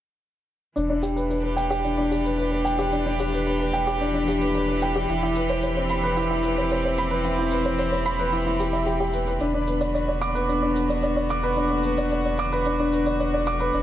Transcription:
0.76 E1 E3 D4, shaker
0.90 D4
1.03 G4, shaker
1.16 B4, shaker
1.25 D4
1.30 B4, shaker
1.39 G4 B4 B5
1.57 G5, shaker
1.70 G4, shaker
1.84 D4, shaker
1.98 D4
2.11 G4, shaker
2.25 B4, shaker
2.38 B4, shaker
2.51 B4
2.65 G5, shaker
2.79 G4, shaker
2.92 D4, shaker
3.06 D4
3.19 G4, shaker
3.33 B4, shaker
3.47 B4, shaker
3.60 B4
3.73 G5, shaker
3.87 G4, shaker
4.00 D4, shaker
4.14 D4
4.28 G4, shaker
4.41 B4, shaker
4.54 B4, shaker
4.69 B4
4.81 G5, shaker
4.95 G4, shaker
5.08 E1 E4, shaker
5.23 E4
5.35 B4, shaker
5.48 C5, shaker
5.62 C5, shaker
5.74 C4 C5
5.89 B5, shaker
6.03 B4, shaker
6.17 E4, shaker
6.30 E4
6.43 B4, shaker
6.57 C5, shaker
6.70 C5, shaker
6.85 C5
6.97 B5, shaker
7.10 B4, shaker
7.24 E4, shaker
7.38 E4
7.51 B4, shaker
7.64 C5, shaker
7.78 C5, shaker
7.93 C5
8.05 B5, shaker
8.19 B4, shaker
8.32 E4, shaker
8.46 E4
8.59 G4, shaker
8.73 E5, shaker
8.86 G4, shaker
9.00 G4
9.13 B4, shaker
9.27 B4, shaker
9.40 E1 D3 D4, shaker
9.54 D4
9.63 B3
9.67 B4, shaker
9.81 F#4 D5, shaker
9.95 D5, shaker
10.09 D5
10.22 D6, shaker
10.35 B4, shaker
10.49 D4, shaker
10.63 D4
10.76 B4, shaker
10.90 D5, shaker
11.03 D5, shaker
11.17 D5
11.30 D6, shaker
11.43 B4, shaker
11.57 D4, shaker
11.70 D4
11.84 B4, shaker
11.97 D5, shaker
12.11 D5, shaker
12.25 D5
12.38 D6, shaker
12.52 B4, shaker
12.65 D4, shaker
12.80 D4
12.93 B4, shaker
13.06 D5, shaker
13.20 D5, shaker
13.34 D5
13.47 D6, shaker
13.60 B4, shaker
13.74 E1 D4, shaker

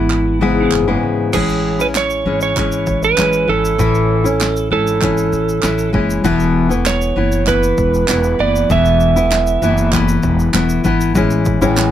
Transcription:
Already playing: G#1 E3 G#3 B3 E4
0.10 clap
0.41 G#2 C#3 E3 G#3 B3 E4
0.72 F#1, clap
0.88 G#2 C#3 E3 G#3 B3 E4
1.03 G#1
1.33 A1 A2 E3 G#3 C#4 E4 G#4, kick, crash, shaker
1.49 shaker
1.79 G#3 C#4 E4 B4, shaker
1.95 C#5, snare, clap, shaker
2.10 shaker
2.25 G#1 E3 G#3 C#4 E4
2.41 C#5, shaker
2.56 E3 G#3 C#4 E4, kick, clap, shaker
2.72 shaker
2.87 A1, kick, shaker
3.03 B4, shaker
3.17 A1 E3 G#3 C#4 E4, snare, clap, shaker
3.33 shaker
3.48 G#1 E3 C#4 E4 A4
3.65 shaker
3.78 A1 A2 E3 C#4 E4, kick, shaker
3.95 shaker
4.24 C#4 E4, shaker
4.41 snare, clap, shaker
4.57 shaker
4.71 G#1 E3 C#4 E4 A4
4.87 shaker
5.02 E3 C#4 E4, kick, clap, shaker
5.18 shaker
5.33 A1, shaker
5.49 shaker
5.62 A1 E3 C#4 E4, snare, clap, shaker
5.78 shaker
5.93 F#1 E3 G#3 C#4 E4, kick
6.10 shaker
6.24 E1 E2 B2 E3 A3 B3 E4, kick, shaker
6.40 shaker
6.69 E3 A3 B3 E4, shaker
6.86 C#5, snare, clap, shaker
7.02 shaker
7.16 F#1 E3 A3 B3 E4
7.32 shaker
7.46 E3 A3 B3 E4 B4, kick, clap, shaker
7.63 shaker
7.78 E1, kick, shaker
7.94 shaker
8.08 E1 E3 A3 B3 E4, snare, clap, shaker
8.24 shaker
8.39 F#1 E3 A3 B3 E4 D5
8.56 shaker
8.70 E1 E2 B2 E3 A3 B3 E4 E5, kick, shaker
8.85 shaker
9.00 shaker
9.16 E3 A3 B3 E4, shaker
9.31 snare, clap, shaker
9.47 shaker
9.62 F#1 E3 A3 B3 E4, shaker
9.78 shaker
9.93 E3 A3 B3 E4, kick, clap, shaker
10.08 shaker
10.23 E1, kick, shaker
10.39 shaker
10.53 E1 E3 A3 B3 E4, snare, clap, shaker
10.69 shaker
10.84 G#1 E3 A3 B3 E4, kick, shaker
11.01 shaker
11.15 A1 E3 G#3 C#4 E4, kick, shaker
11.31 shaker
11.45 kick, shaker
11.61 A1 A2 E3 G#3 C#4 E4, shaker
11.77 snare, clap, shaker

